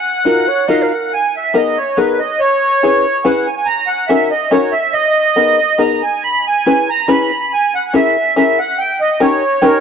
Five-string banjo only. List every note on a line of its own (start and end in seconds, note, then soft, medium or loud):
0.25 0.47 D#4 medium
0.25 0.48 F4 medium
0.25 0.48 F#4 soft
0.25 0.48 A#4 medium
0.68 0.91 D#4 medium
0.68 0.91 F4 medium
0.68 0.91 F#4 medium
0.68 0.92 A#4 medium
1.54 1.77 B3 medium
1.54 1.76 D#4 medium
1.54 1.77 G#4 medium
1.54 1.77 A#4 medium
1.97 2.20 B3 medium
1.97 2.19 D#4 medium
1.97 2.20 G#4 medium
1.97 2.19 A#4 medium
2.83 3.05 C#4 medium
2.83 3.05 E4 medium
2.83 3.05 G#4 medium
2.83 3.05 B4 medium
3.24 3.46 C#4 medium
3.24 3.46 E4 medium
3.24 3.46 G#4 medium
3.24 3.47 B4 medium
4.09 4.31 C#4 medium
4.09 4.31 D#4 medium
4.09 4.31 F#4 medium
4.09 4.31 A#4 medium
4.51 4.73 C#4 medium
4.51 4.73 D#4 medium
4.51 4.73 F#4 medium
4.51 4.73 A#4 medium
5.36 5.58 B3 medium
5.36 5.58 D#4 medium
5.36 5.58 G#4 medium
5.36 5.58 A#4 medium
5.78 6.01 B3 medium
5.78 6.01 D#4 medium
5.78 6.02 G#4 medium
5.78 6.01 A#4 medium
6.66 6.88 C#4 medium
6.66 6.88 E4 medium
6.66 6.88 G#4 soft
6.66 6.88 B4 medium
7.08 7.30 C#4 medium
7.08 7.30 E4 medium
7.08 7.30 G#4 medium
7.08 7.30 B4 medium
7.93 8.15 C#4 medium
7.93 8.15 E4 medium
7.93 8.16 G#4 medium
7.93 8.16 A#4 medium
8.36 8.58 C#4 medium
8.36 8.58 E4 medium
8.36 8.58 G#4 medium
8.36 8.58 A#4 medium
9.20 9.42 C#4 medium
9.20 9.42 D#4 medium
9.20 9.42 G4 medium
9.20 9.42 A#4 medium
9.62 9.80 C#4 medium
9.62 9.80 D#4 medium
9.62 9.80 G4 medium
9.62 9.80 A#4 medium